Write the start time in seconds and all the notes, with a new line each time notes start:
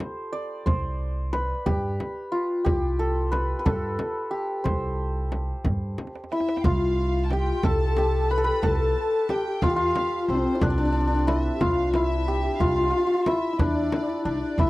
Already playing: F4 G4 A4 C5
0.00 tombak tek, frame drum
0.33 D5, tombak ka
0.66 C2 C5, frame drum, tombak dum
0.84 tombak ka
1.33 B4, tombak tek, frame drum
1.66 G2 G4, frame drum, tombak dum
2.00 tombak tek, frame drum
2.32 F4, tombak ka
2.65 C2 G4, frame drum, tombak dum
2.83 tombak ka
2.99 A4
3.32 B4, tombak tek, frame drum
3.59 B4
3.66 G2 A4, tombak dum, frame drum
3.99 tombak tek, frame drum
4.31 G4, tombak ka
4.64 C2 C5, frame drum, tombak dum
4.83 tombak ka
5.32 tombak tek, frame drum
5.64 G2, frame drum, tombak dum
5.98 tombak tek, frame drum
6.07 tombak ka
6.15 tombak tek
6.24 tombak ka
6.32 E4 E5, tombak tek
6.40 tombak ka
6.49 tombak tek
6.57 G5, tombak ka
6.64 C2 F4 F5, frame drum, tombak dum
6.98 tombak ka
7.15 F4
7.24 A5
7.30 G4 G5, tombak tek, frame drum
7.63 C2 A4 A5, frame drum, tombak dum
7.97 G4, frame drum
8.31 B4 B5
8.38 A4
8.44 B4 B5
8.63 C2 A4 A5, frame drum, tombak dum
8.97 tombak ka
9.29 G4 G5, tombak tek, frame drum
9.62 E2 F4 F5, frame drum, tombak dum
9.70 G4
9.76 F4 F5
9.96 tombak tek, frame drum
10.28 C2 C4 C5
10.56 E4
10.61 C2 D4 D5, frame drum, tombak dum
10.70 D4
10.78 D4
10.85 D4
10.92 D4
11.00 D4
11.07 D4
11.14 D4
11.27 E4 E5, tombak tek, frame drum
11.55 G4
11.61 C2 F4 F5, frame drum, tombak dum
11.94 E4 E5, tombak tek, frame drum
12.28 G4
12.60 C2 F4 F5, frame drum, tombak dum
12.68 F4
12.76 F4
12.83 F4
12.90 F4, tombak ka
12.98 F4
13.07 F4
13.13 F4
13.26 E4 E5, tombak tek, frame drum
13.53 E4
13.59 E2 D4 D5, frame drum, tombak dum
13.92 tombak tek, frame drum
14.09 E4
14.14 E4 F4
14.25 C2 D4 D5
14.58 C2 E4 E5, frame drum, tombak dum